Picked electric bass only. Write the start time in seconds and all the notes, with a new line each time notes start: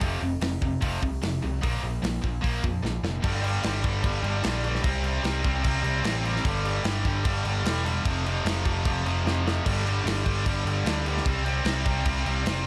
0.01 F1
0.22 F1
0.42 F1
0.62 F1
0.82 F1
1.02 C2
1.23 F1
1.44 C2
1.63 A#1
1.83 A#1
2.03 A#1
2.24 A#1
2.44 A#1
2.64 F2
2.84 A#1
3.03 F1
3.24 G1
3.64 G1
3.84 G1
4.04 G1
4.24 G1
4.45 A#1
4.84 C2
5.24 C2
5.45 C2
5.65 C2
5.84 C2
6.04 A1
6.45 G1
6.85 G1
7.05 G1
7.25 G1
7.45 G1
7.65 E1
8.05 F1
8.45 F1
8.66 F1
8.86 F1
9.06 F1
9.25 F1
9.66 G1
10.06 G1
10.26 G1
10.46 G1
10.65 G1
10.85 D2
11.26 C2
11.65 C2
11.86 C2
12.05 C2
12.26 C2
12.47 F1